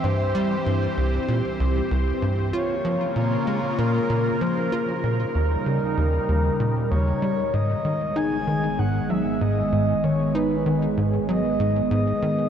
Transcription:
<<
  \new Staff \with { instrumentName = "Soft synth lead" } { \time 4/4 \key ees \mixolydian \tempo 4 = 96 c''4. r2 r8 | des''4 des''4 bes'4 c''8 bes'8~ | bes'2. des''4 | \key gis \minor dis''4 gis''4 fis''8 e''8 dis''4 |
cis''8 b'4 r8 dis''4 dis''4 | }
  \new Staff \with { instrumentName = "Analog synth pad" } { \time 4/4 \key ees \mixolydian << { c''1 | bes'1~ | bes'1 | \key gis \minor gis'1~ |
gis'1 | } \\ { <e c' g'>1 | <des bes f'>1 | <des g ees'>1 | <dis gis b>1~ |
<dis gis b>1 | } >> }
  \new Staff \with { instrumentName = "Analog synth bass" } { \clef bass \time 4/4 \key ees \mixolydian g,8 g8 g,8 c,8 bes,8 c,8 c,8 g,8 | f'8 f8 bes,8 aes8 bes,8 bes,8 f8 f'8 | bes,8 ees,8 des8 ees,8 ees,8 bes,8 ees,8 g8 | \key gis \minor gis,8 dis8 dis'8 dis8 gis,8 fis8 gis,8 gis,8 |
dis8 dis'8 dis8 gis,8 fis8 gis,8 gis,8 dis8 | }
  \new Staff \with { instrumentName = "Sub bass" } { \clef bass \time 4/4 \key ees \mixolydian r1 | r1 | r1 | \key gis \minor gis,,1~ |
gis,,1 | }
>>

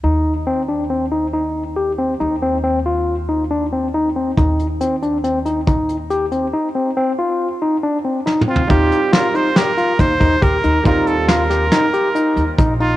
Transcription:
<<
  \new Staff \with { instrumentName = "Trumpet" } { \time 5/4 \key ees \major \tempo 4 = 139 r1 r4 | r1 r4 | r1 r4 | r1 r8 f'8 |
g'4 bes'8 c''8 bes'4 c''4 bes'4 | bes'8 a'8 bes'2. r8 f'8 | }
  \new Staff \with { instrumentName = "Tine electric piano" } { \time 5/4 \key ees \major ees'4 c'8 d'8 c'8 ees'8 ees'4 g'8 c'8 | ees'8 c'8 c'8 f'4 ees'8 d'8 c'8 ees'8 c'8 | ees'4 c'8 d'8 c'8 ees'8 ees'4 g'8 c'8 | ees'8 c'8 c'8 f'4 ees'8 d'8 c'8 ees'8 c'8 |
ees'4 f'8 ees'8 g'8 f'8 ees'8 ees'8 g'8 ees'8 | ees'4 f'8 g'8 ees'8 g'8 ees'4 ees'8 ees'8 | }
  \new Staff \with { instrumentName = "Grand piano" } { \time 5/4 \key ees \major r1 r4 | r1 r4 | r1 r4 | r1 r4 |
<g c' f'>1~ <g c' f'>4 | <g c' f'>1~ <g c' f'>4 | }
  \new Staff \with { instrumentName = "Upright bass" } { \clef bass \time 5/4 \key ees \major ees,1~ ees,4 | ees,1~ ees,4 | ees,1~ ees,4 | r1 r4 |
ees,8 r2 r8 ees,8 ees,8 ees,8 ees,8 | ees,2 r4. ees,8 bes,,4 | }
  \new DrumStaff \with { instrumentName = "Drums" } \drummode { \time 5/4 r4 r4 r4 r4 r4 | r4 r4 r4 r4 r4 | <hh bd>8 hh8 hh8 hh8 hh8 hh8 <hh bd>8 hh8 hh8 hh8 | r4 r4 r4 r4 \tuplet 3/2 { sn8 toml8 tomfh8 } |
<hh bd>8 hh8 <hh sn>8 hh8 <hh sn>8 hh8 <hh bd sn>8 <hh bd>8 <hh bd>8 hh8 | <hh bd>8 hh8 <hh sn>8 <hh sn>8 <hh sn>8 hh8 hh8 hh8 <hh bd>8 hh8 | }
>>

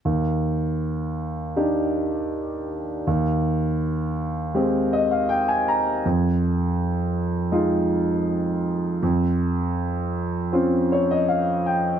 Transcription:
\new Staff \with { instrumentName = "Grand piano" } { \time 4/4 \key ees \major \tempo 4 = 80 << { r1 | r2 r8 ees''16 f''16 g''16 aes''16 bes''8 | r1 | r2 r8 des''16 ees''16 f''8 g''8 | } \\ { ees,2 <d' ees' g'>2 | ees,2 <aes c' g'>2 | f,2 <aes ees' f'>2 | f,2 <c' des' f'>2 | } >> }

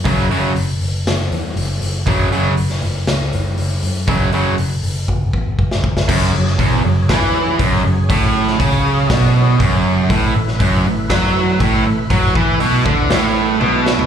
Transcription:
<<
  \new Staff \with { instrumentName = "Tonewheel organ" } { \time 4/4 \key fis \minor \tempo 4 = 120 r1 | r1 | r1 | <fis cis' gis'>1~ |
<fis cis' gis'>1 | <a e' b'>1~ | <a e' b'>1 | }
  \new Staff \with { instrumentName = "Distorted electric guitar" } { \clef bass \time 4/4 \key fis \minor <fis, cis fis>8 <fis, cis fis>8 r2. | <fis, cis fis>8 <fis, cis fis>8 r2. | <fis, cis fis>8 <fis, cis fis>8 r2. | fis,8 fis,8 e,8 fis,8 e4 fis,8 fis,8 |
a,4 cis4 b,4 fis,4 | a,8 a,8 fis,8 a,8 fis4 a,8 a,8 | fis8 e8 b,8 d8 a,4 b,4 | }
  \new Staff \with { instrumentName = "Overdriven electric guitar" } { \clef bass \time 4/4 \key fis \minor <fis, cis fis>8 <fis, cis fis>8 r2. | <fis, cis fis>8 <fis, cis fis>8 r2. | <fis, cis fis>8 <fis, cis fis>8 r2. | fis,8 fis,8 e,8 fis,8 e4 fis,8 fis,8 |
a,4 cis4 b,4 fis,4 | a,8 a,8 fis,8 a,8 fis4 a,8 a,8 | fis8 e8 b,8 d8 a,4 b,4 | }
  \new Staff \with { instrumentName = "Picked electric bass" } { \clef bass \time 4/4 \key fis \minor fis,,8 fis,,8 fis,,8 fis,,8 fis,,8 e,8 fis,,8 fis,,8 | fis,,8 fis,,8 fis,,8 fis,,8 cis,8 fis,,8 fis,,8 fis,8 | fis,,8 fis,,8 fis,,8 fis,,8 fis,,8 e,8 fis,,8 fis,,8 | fis,,8 fis,,8 e,,8 fis,,8 e,4 fis,,8 fis,,8 |
a,,4 cis,4 b,,4 fis,,4 | a,,8 a,,8 fis,,8 a,,8 fis,4 a,,8 a,,8 | fis,8 e,8 b,,8 d,8 a,,4 b,,4 | }
  \new DrumStaff \with { instrumentName = "Drums" } \drummode { \time 4/4 <hho bd>8 hho8 hho8 hho8 <hho sn>8 hho8 hho8 hho8 | <hho bd>8 hho8 hho16 sn16 hho8 <hho sn>8 hho8 hho8 hho8 | <hho bd>8 hho8 hho8 hho8 bd8 bd8 bd16 sn16 bd16 sn16 | <cymc bd>8. sn16 <hho bd>4 <hho bd sn>4 <hho bd>4 |
<hho bd>8. sn16 <hho bd>4 <hho bd sn>4 <hho bd>4 | <hho bd>8. sn16 <hho bd>4 <hho bd sn>4 <hho bd>4 | <hho bd>8 bd8 hho8 bd8 <hho sn>4 tommh8 sn16 tomfh16 | }
>>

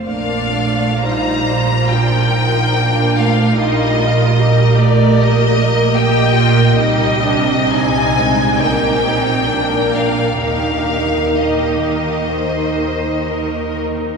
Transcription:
<<
  \new Staff \with { instrumentName = "Violin section" } { \time 4/4 \key ees \lydian \tempo 4 = 68 f''4 bes''4 g''4. f''8 | ees''4. d''8 ees''4 g''4 | \key ees \major ees''4 aes''4 g''4. f''8 | f''4 ees''2~ ees''8 r8 | }
  \new Staff \with { instrumentName = "Violin section" } { \time 4/4 \key ees \lydian << { d''4 c''4 bes'2 | bes'2. ees''4 | \key ees \major ees''2 bes'4 d''4 | g'4 g'4 c''4 bes'4 | } \\ { f'2 d'8 ees'8 f'4~ | f'4 bes'2 g'4 | g'4 ees'4 g'4 bes'4 | bes'4 r2. | } >> }
  \new Staff \with { instrumentName = "Viola section" } { \time 4/4 \key ees \lydian << { d'4 ees'8 f'4. d'4 | ees'8 f'8 g'2 g'8 f'8 | \key ees \major ees'8 d'8 c'4 ees'4 d'8 d'8 | ees'1 | } \\ { bes8 a8 g4 f4 bes8 a8 | g4 g8 a8 bes8 bes4. | g4 g8 aes8 bes8 c'8 bes4 | bes1 | } >> }
  \new Staff \with { instrumentName = "Cello section" } { \clef bass \time 4/4 \key ees \lydian bes,1 | bes,1 | \key ees \major c2 bes,2 | ees1 | }
  \new Staff \with { instrumentName = "Double bass section" } { \clef bass \time 4/4 \key ees \lydian bes,,1 | bes,,1 | \key ees \major c,2 bes,,2 | ees,1 | }
>>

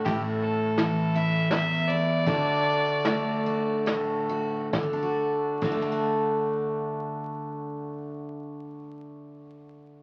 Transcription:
<<
  \new Staff \with { instrumentName = "Fiddle" } { \time 3/4 \key d \major \tempo 4 = 68 g'8 a'4 e''8 e''8 d''8~ | d''2 r4 | r2. | r2. | }
  \new Staff \with { instrumentName = "Steel-string acoustic guitar" } { \time 3/4 \key d \major << { <a e'>4. e'4 e'8 | <d' fis'>4. fis'4 fis'8 | <a d' fis'>8 r8 <a d' fis'>2~ | <a d' fis'>2. | } \\ { a,4 e4 e,4 | d4 a4 a,4 | d8 r8 d2~ | d2. | } >> }
  \new Staff \with { instrumentName = "Upright bass" } { \clef bass \time 3/4 \key d \major a,,2. | d,2. | d,8 r8 d,2~ | d,2. | }
  \new DrumStaff \with { instrumentName = "Drums" } \drummode { \time 3/4 <bd cymr>4 <cymr sn>4 <cymr sn>4 | <bd cymr>4 <cymr sn>4 <cymr sn>4 | <bd sn>4 <cymc bd>4 r4 | r4 r4 r4 | }
>>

